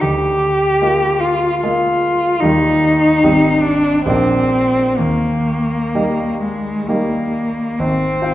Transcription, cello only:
0, 0, Header, 1, 2, 480
1, 0, Start_track
1, 0, Key_signature, -3, "major"
1, 0, Tempo, 806452
1, 19, Time_signature, 3, 2, 24, 8
1, 2419, Tempo, 943396
1, 3859, Tempo, 879765
1, 4649, End_track
2, 0, Start_track
2, 0, Title_t, "Cello"
2, 0, Program_c, 0, 42
2, 7, Note_on_c, 0, 67, 47
2, 718, Note_on_c, 0, 65, 41
2, 727, Note_off_c, 0, 67, 0
2, 959, Note_off_c, 0, 65, 0
2, 962, Note_on_c, 0, 65, 49
2, 1433, Note_on_c, 0, 63, 54
2, 1441, Note_off_c, 0, 65, 0
2, 2153, Note_on_c, 0, 62, 50
2, 2162, Note_off_c, 0, 63, 0
2, 2412, Note_off_c, 0, 62, 0
2, 2415, Note_on_c, 0, 60, 52
2, 2881, Note_on_c, 0, 58, 41
2, 2888, Note_off_c, 0, 60, 0
2, 3612, Note_off_c, 0, 58, 0
2, 3615, Note_on_c, 0, 56, 39
2, 3854, Note_on_c, 0, 58, 37
2, 3862, Note_off_c, 0, 56, 0
2, 4346, Note_on_c, 0, 60, 50
2, 4354, Note_off_c, 0, 58, 0
2, 4649, Note_off_c, 0, 60, 0
2, 4649, End_track
0, 0, End_of_file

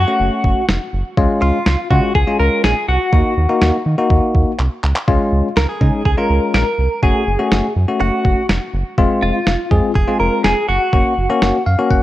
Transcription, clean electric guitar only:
0, 0, Header, 1, 2, 480
1, 0, Start_track
1, 0, Key_signature, -5, "major"
1, 0, Tempo, 487805
1, 1156, Time_signature, 4, 2, 24, 8
1, 11836, End_track
2, 0, Start_track
2, 0, Title_t, "Clean electric guitar"
2, 0, Program_c, 0, 27
2, 0, Note_on_c, 0, 66, 87
2, 638, Note_off_c, 0, 66, 0
2, 1395, Note_on_c, 0, 65, 87
2, 1842, Note_off_c, 0, 65, 0
2, 1875, Note_on_c, 0, 66, 85
2, 2112, Note_off_c, 0, 66, 0
2, 2116, Note_on_c, 0, 68, 103
2, 2352, Note_off_c, 0, 68, 0
2, 2356, Note_on_c, 0, 70, 101
2, 2579, Note_off_c, 0, 70, 0
2, 2597, Note_on_c, 0, 68, 94
2, 2834, Note_off_c, 0, 68, 0
2, 2838, Note_on_c, 0, 66, 85
2, 3758, Note_off_c, 0, 66, 0
2, 5479, Note_on_c, 0, 70, 100
2, 5593, Note_off_c, 0, 70, 0
2, 5597, Note_on_c, 0, 68, 97
2, 5931, Note_off_c, 0, 68, 0
2, 5957, Note_on_c, 0, 68, 97
2, 6077, Note_off_c, 0, 68, 0
2, 6081, Note_on_c, 0, 70, 100
2, 6427, Note_off_c, 0, 70, 0
2, 6439, Note_on_c, 0, 70, 97
2, 6915, Note_off_c, 0, 70, 0
2, 6919, Note_on_c, 0, 68, 82
2, 7599, Note_off_c, 0, 68, 0
2, 7876, Note_on_c, 0, 66, 109
2, 8323, Note_off_c, 0, 66, 0
2, 9078, Note_on_c, 0, 65, 89
2, 9796, Note_on_c, 0, 68, 104
2, 9819, Note_off_c, 0, 65, 0
2, 10031, Note_off_c, 0, 68, 0
2, 10035, Note_on_c, 0, 70, 102
2, 10259, Note_off_c, 0, 70, 0
2, 10276, Note_on_c, 0, 68, 94
2, 10500, Note_off_c, 0, 68, 0
2, 10515, Note_on_c, 0, 66, 88
2, 11437, Note_off_c, 0, 66, 0
2, 11836, End_track
0, 0, End_of_file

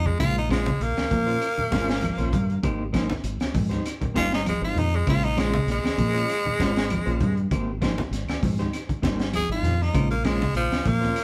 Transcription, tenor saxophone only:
0, 0, Header, 1, 2, 480
1, 0, Start_track
1, 0, Tempo, 609137
1, 155, Time_signature, 4, 2, 24, 8
1, 8856, End_track
2, 0, Start_track
2, 0, Title_t, "Tenor saxophone"
2, 0, Program_c, 0, 66
2, 49, Note_on_c, 0, 56, 82
2, 150, Note_off_c, 0, 56, 0
2, 156, Note_on_c, 0, 65, 104
2, 275, Note_off_c, 0, 65, 0
2, 299, Note_on_c, 0, 63, 78
2, 396, Note_off_c, 0, 63, 0
2, 408, Note_on_c, 0, 56, 90
2, 650, Note_on_c, 0, 58, 100
2, 662, Note_off_c, 0, 56, 0
2, 2053, Note_off_c, 0, 58, 0
2, 3286, Note_on_c, 0, 65, 101
2, 3402, Note_off_c, 0, 65, 0
2, 3421, Note_on_c, 0, 63, 86
2, 3518, Note_off_c, 0, 63, 0
2, 3536, Note_on_c, 0, 56, 85
2, 3647, Note_off_c, 0, 56, 0
2, 3661, Note_on_c, 0, 65, 88
2, 3773, Note_on_c, 0, 63, 92
2, 3785, Note_off_c, 0, 65, 0
2, 3906, Note_on_c, 0, 56, 88
2, 3918, Note_off_c, 0, 63, 0
2, 4001, Note_off_c, 0, 56, 0
2, 4016, Note_on_c, 0, 65, 98
2, 4134, Note_on_c, 0, 63, 100
2, 4146, Note_off_c, 0, 65, 0
2, 4251, Note_on_c, 0, 56, 91
2, 4263, Note_off_c, 0, 63, 0
2, 4478, Note_off_c, 0, 56, 0
2, 4502, Note_on_c, 0, 56, 116
2, 5898, Note_off_c, 0, 56, 0
2, 7372, Note_on_c, 0, 68, 98
2, 7484, Note_off_c, 0, 68, 0
2, 7499, Note_on_c, 0, 65, 94
2, 7741, Note_on_c, 0, 63, 86
2, 7753, Note_off_c, 0, 65, 0
2, 7960, Note_off_c, 0, 63, 0
2, 7964, Note_on_c, 0, 58, 85
2, 8076, Note_on_c, 0, 56, 93
2, 8088, Note_off_c, 0, 58, 0
2, 8308, Note_off_c, 0, 56, 0
2, 8327, Note_on_c, 0, 53, 96
2, 8570, Note_on_c, 0, 58, 96
2, 8582, Note_off_c, 0, 53, 0
2, 8856, Note_off_c, 0, 58, 0
2, 8856, End_track
0, 0, End_of_file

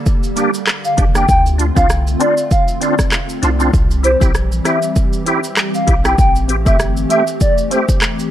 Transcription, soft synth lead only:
0, 0, Header, 1, 2, 480
1, 0, Start_track
1, 0, Key_signature, -1, "minor"
1, 0, Tempo, 612245
1, 1008, Time_signature, 4, 2, 24, 8
1, 6513, End_track
2, 0, Start_track
2, 0, Title_t, "Soft synth lead"
2, 0, Program_c, 0, 80
2, 664, Note_on_c, 0, 77, 76
2, 742, Note_off_c, 0, 77, 0
2, 905, Note_on_c, 0, 79, 79
2, 983, Note_off_c, 0, 79, 0
2, 1010, Note_on_c, 0, 79, 112
2, 1109, Note_off_c, 0, 79, 0
2, 1383, Note_on_c, 0, 77, 87
2, 1462, Note_off_c, 0, 77, 0
2, 1729, Note_on_c, 0, 74, 93
2, 1829, Note_off_c, 0, 74, 0
2, 1970, Note_on_c, 0, 77, 94
2, 2069, Note_off_c, 0, 77, 0
2, 2209, Note_on_c, 0, 74, 75
2, 2309, Note_off_c, 0, 74, 0
2, 3168, Note_on_c, 0, 72, 86
2, 3269, Note_off_c, 0, 72, 0
2, 3649, Note_on_c, 0, 76, 77
2, 3749, Note_off_c, 0, 76, 0
2, 4504, Note_on_c, 0, 77, 78
2, 4582, Note_off_c, 0, 77, 0
2, 4744, Note_on_c, 0, 79, 76
2, 4822, Note_off_c, 0, 79, 0
2, 4848, Note_on_c, 0, 79, 111
2, 4949, Note_off_c, 0, 79, 0
2, 5224, Note_on_c, 0, 76, 85
2, 5303, Note_off_c, 0, 76, 0
2, 5568, Note_on_c, 0, 76, 96
2, 5668, Note_off_c, 0, 76, 0
2, 5809, Note_on_c, 0, 74, 96
2, 5909, Note_off_c, 0, 74, 0
2, 6048, Note_on_c, 0, 72, 78
2, 6148, Note_off_c, 0, 72, 0
2, 6513, End_track
0, 0, End_of_file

